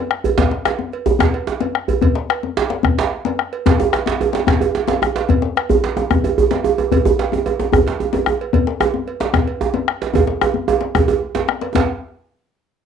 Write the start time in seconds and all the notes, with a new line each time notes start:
0.11 bombo rim
0.24 cowbell, djembe bass
0.38 bombo low, cowbell, djembe slap, djembe bass
0.51 djembe slap
0.65 bombo rim, cowbell, djembe slap
0.79 djembe tone
0.93 cowbell, djembe slap
1.06 djembe slap, djembe bass
1.19 bombo rim, bombo low, cowbell, djembe slap, djembe bass
1.34 cowbell
1.47 djembe slap
1.61 cowbell, djembe slap, djembe tone
1.75 bombo rim
1.88 cowbell, djembe bass
2.02 bombo low, cowbell, djembe bass
2.15 djembe slap
2.29 bombo rim, cowbell, djembe slap
2.43 djembe tone
2.57 djembe slap
2.70 djembe slap
2.83 bombo rim, bombo low, cowbell, djembe bass
2.98 cowbell, djembe slap
3.25 cowbell, djembe slap, djembe tone
3.39 bombo rim
3.53 cowbell
3.66 bombo rim, bombo low, cowbell, djembe slap, djembe bass
3.80 djembe slap, djembe tone
3.93 bombo rim, cowbell, djembe slap
4.06 djembe slap, djembe tone
4.21 bombo rim, cowbell, djembe tone
4.33 djembe slap
4.35 djembe slap
4.47 bombo rim, bombo low, cowbell, djembe slap, djembe bass
4.61 cowbell, djembe slap, djembe tone
4.75 bombo rim, djembe slap
4.88 cowbell, djembe slap, djembe tone
5.02 bombo rim, djembe slap, djembe tone
5.16 cowbell, djembe slap
5.29 bombo low, cowbell, djembe bass
5.42 djembe slap
5.56 bombo rim, cowbell, djembe slap
5.69 djembe tone, djembe bass
5.83 cowbell, djembe slap
5.97 djembe slap, djembe tone
6.10 bombo rim, bombo low, cowbell, djembe tone, djembe bass
6.24 cowbell, djembe tone
6.38 djembe bass
6.51 cowbell, djembe slap, djembe tone
6.64 djembe tone
6.78 cowbell, djembe tone
6.91 bombo low, cowbell, djembe tone, djembe bass
7.05 djembe slap, djembe bass
7.19 cowbell, djembe slap
7.32 djembe tone
7.45 cowbell, djembe slap, djembe tone
7.59 djembe slap, djembe tone
7.72 bombo rim, bombo low, cowbell, djembe bass
7.87 cowbell, djembe slap
8.00 djembe tone
8.13 cowbell, djembe slap, djembe tone
8.26 bombo rim, djembe tone
8.41 cowbell
8.53 bombo low, cowbell, djembe bass
8.67 djembe slap
8.80 bombo rim, cowbell, djembe slap, djembe tone
8.94 djembe tone
9.07 cowbell, djembe slap
9.20 djembe slap
9.33 bombo rim, bombo low, cowbell, djembe slap, djembe bass
9.47 cowbell
9.61 djembe tone
9.74 cowbell, djembe slap, djembe tone
9.88 bombo rim
10.02 cowbell, djembe slap
10.14 bombo low, cowbell, djembe slap, djembe tone, djembe bass
10.27 djembe slap
10.41 bombo rim, cowbell, djembe tone
10.54 bombo rim, djembe slap, djembe tone
10.68 cowbell, djembe tone
10.81 bombo rim, djembe slap
10.95 bombo rim, bombo low, cowbell, djembe slap, djembe tone, djembe bass
11.08 cowbell, djembe tone
11.35 cowbell, djembe slap, djembe bass
11.48 bombo rim, djembe slap
11.61 bombo rim, cowbell, djembe slap
11.75 bombo low, cowbell, djembe slap, djembe bass